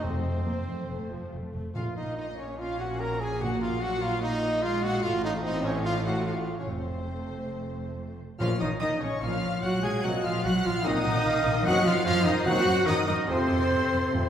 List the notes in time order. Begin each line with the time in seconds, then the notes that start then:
0.03 F1 F2 A3 C4 C5
0.14 F2
0.36 F2
0.45 F1 F2 A#3
0.57 F2
0.67 F1 F2 A3
0.78 F2
0.89 F1 F2 A3
1.00 F2
1.10 F1 F2 F3
1.20 F2
1.32 F1 F2 A3
1.42 F2
1.52 F1 F2
1.74 A#1 A#2 F4 F5
1.97 D#4 D#5
2.17 D#4 D#5
2.38 C#4 C#5
2.59 C#4 F4 F5
2.80 F#4 F#5
3.00 A#4 A#5
3.21 G#4 G#5
3.41 A#2 A#3 F#4 F#5
3.61 F4 F5
3.81 F#3 F#4 F#5
4.02 F4 F5
4.22 A#3 D#4 D#5
4.63 G#3 F4 F5
4.83 F#4 F#5
5.03 A1 A2 A3 F4 F5
5.24 D#4 D#5
5.43 C4 D#4 D#5
5.65 C#4 C#5
5.83 A3 F4 F5
6.05 F#4 F#5
6.26 F4 F5
6.59 C#4 C#5
6.68 F1 F2 A3 C4 C5
8.39 A#1 A#2 F3 A#3 C#4 F4 C#5 F5 F6
8.60 A#1 D#3 D#4 D#5 D#6
8.80 A#1 D#3 D#4 D#5 D#6
9.01 A#1 C#3 C#4 C#5 C#6
9.21 A#1 A#2 F3 A#3 C#4 F4 C#5 F5 F6
9.43 A#1
9.62 A#1 F#3 F#4 C#5 F#5 F#6
9.82 A#1 G#3 G#4 G#5 G#6
10.03 A#1 A#2 F#3 A#3 C4 F#4 D#5 F#5 F#6
10.23 A#1 F3 F4 F5 F6
10.43 A#1 F#3 F#4 F#5 F#6
10.63 A#1 F3 F4 F5 F6
10.84 A#1 A#2 D#3 F#3 A#3 C4 D#4 D#5 F#5 D#6
11.05 A#1
11.25 A#1 F5
11.45 A#1
11.64 F#2 D#3 F#3 A#3 C4 F#4 D#5 F#5 F#6
11.85 F#2 F3 F4 F5 F6
12.05 F#2 F3 F4 C5 F5 F6
12.25 F#2 D#3 D#4 D#5 D#6
12.45 F#2 D#3 F#3 A#3 C4 F#4 F#5 F#6
12.66 F#2
12.86 F#2 D#3 D#4 A#4 D#5 D#6
13.07 F#2 D#3 D#4 D#5 D#6
13.27 F2 C3 F3 A3 C4 A4 C5 C6
13.50 F2
13.70 F2
13.91 F2
14.12 F2 C3 F3 A3 C4